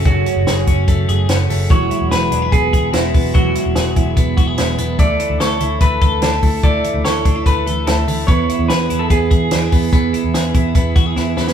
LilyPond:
<<
  \new Staff \with { instrumentName = "Clean electric guitar" } { \time 4/4 \key e \mixolydian \tempo 4 = 146 fis'2. r4 | cis''4 b'4 gis'4 fis'4 | fis'2. r4 | d''4 cis''4 b'4 a'4 |
d''4 cis''4 b'4 a'4 | cis''4 b'8. a'16 gis'2~ | gis'2. r4 | }
  \new Staff \with { instrumentName = "Clean electric guitar" } { \time 4/4 \key e \mixolydian <fis a cis' gis'>8 cis'8 gis'8 cis'8 a8 gis'8 cis'8 a8 | fis8 e'8 gis'8 d'16 e'16 b8 gis'8 e'8 b8 | fis8 e'8 gis'8 e'8 b8 fis'16 gis'16 e'8 b8 | a8 e'8 a'8 e'8 a8 a'8 d'16 e'16 a8 |
a8 e'8 a'8 d'16 e'16 a8 a'8 e'8 a8 | b8 e'8 gis'8 e'8 b8 gis'8 d'16 e'16 b8 | b8 e'8 gis'8 e'8 b8 fis'16 gis'16 e'8 b8 | }
  \new Staff \with { instrumentName = "Steel-string acoustic guitar" } { \time 4/4 \key e \mixolydian <fis, cis a cis' fis' gis'>4. <a cis' fis' gis'>4 <a cis' fis' gis'>8 <a cis' fis' gis'>8 <a cis' fis' gis'>8 | <e gis b e' fis'>4. <gis b e' fis'>4 <gis b e' fis'>8 <gis b e' fis'>8 <gis b e' fis'>8 | <e gis b e' fis'>4. <gis b e' fis'>4 <gis b e' fis'>8 <gis b e' fis'>8 <gis b e' fis'>8 | <d e a e' a'>4. <e a e' a'>4 <e a e' a'>8 <e a e' a'>8 <e a e' a'>8 |
<d e a e' a'>4. <e a e' a'>4 <e a e' a'>8 <e a e' a'>8 <e a e' a'>8 | <e b e' gis'>4. <e b e' gis'>4 <e b e' gis'>8 <e b e' gis'>8 <e b e' gis'>8 | <e b e' gis'>4. <e b e' gis'>4 <e b e' gis'>8 <e b e' gis'>8 <e b e' gis'>8 | }
  \new Staff \with { instrumentName = "Picked electric bass" } { \clef bass \time 4/4 \key e \mixolydian fis,,8 r16 fis,,16 fis,,8 fis,,8 fis,,8 fis,,8 fis,,8 fis,,8 | e,,8 r16 e,,16 e,,8 e,,8 e,,8 e,,8 e,,8 e,,8 | e,,8 r16 e,,16 e,,8 e,,8 e,,8 e,,8 e,,8 e,,8 | d,8 r16 d,16 d,8 d,8 d,8 d,8 d,8 d,8 |
d,8 r16 d,16 d,8 d,8 d,8 d,8 d,8 d,8 | e,8 r16 e,16 e,8 e,8 e,8 e,8 e,8 e,8 | e,8 r16 e,16 e,8 e,8 e,8 e,8 e,8 e,8 | }
  \new DrumStaff \with { instrumentName = "Drums" } \drummode { \time 4/4 <hh bd>8 hh8 <hh sn>8 <hh bd>8 <hh bd>8 hh8 <hh sn>8 hho8 | <hh bd>8 hh8 <hh sn>8 hh8 <hh bd>8 <hh bd>8 <hh sn>8 <hho bd>8 | <hh bd>8 hh8 <hh sn>8 <hh bd>8 <hh bd>8 <hh bd>8 <hh sn>8 hh8 | <hh bd>8 hh8 <hh sn>8 hh8 <hh bd>8 <hh bd>8 <hh sn>8 <hho bd>8 |
<hh bd>8 hh8 <hh sn>8 <hh bd>8 <hh bd>8 hh8 <hh sn>8 hho8 | <hh bd>8 hh8 <hh sn>8 hh8 <hh bd>8 <hh bd>8 <hh sn>8 <hho bd>8 | <hh bd>8 hh8 <hh sn>8 <hh bd>8 <hh bd>8 <hh bd>8 sn8 sn16 sn16 | }
>>